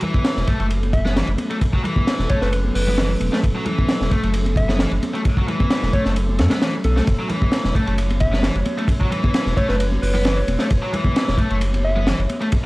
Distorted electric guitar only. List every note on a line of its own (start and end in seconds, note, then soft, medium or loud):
0.02 0.47 E3 medium
0.48 0.58 A3 loud
0.60 0.65 A3 loud
1.05 1.15 B3 loud
1.16 1.27 E3 medium
1.51 1.56 A3 loud
1.73 1.83 F#3 medium
1.84 2.28 E3 medium
2.29 2.40 A3 loud
2.42 2.47 A3 loud
2.87 2.97 B3 loud
2.98 3.08 E3 medium
3.32 3.38 A3 loud
3.55 3.65 F#3 medium
3.66 4.10 E3 medium
4.11 4.22 A3 loud
4.23 4.29 A3 loud
4.69 4.79 B3 loud
4.79 4.90 E3 medium
5.14 5.20 A3 loud
5.37 5.47 F#3 medium
5.48 5.92 E3 medium
5.93 6.04 A3 loud
6.05 6.11 A3 loud
6.51 6.61 B3 loud
6.61 6.72 E3 medium
6.96 7.02 A3 loud
7.19 7.29 F#3 medium
7.30 7.74 E3 medium
7.75 7.86 A3 loud
7.87 7.93 A3 loud
8.33 8.43 B3 loud
8.43 8.54 E3 medium
8.78 8.84 A3 loud
9.00 9.10 F#3 medium
9.11 9.56 E3 medium
9.57 9.67 A3 loud
9.69 9.74 A3 loud
10.14 10.24 B3 loud
10.25 10.36 E3 medium
10.60 10.65 A3 loud
10.82 10.92 F#3 medium
10.93 11.38 E3 medium
11.38 11.49 A3 loud
11.51 11.56 A3 loud
11.96 12.06 B3 loud
12.07 12.17 E3 medium
12.41 12.47 A3 loud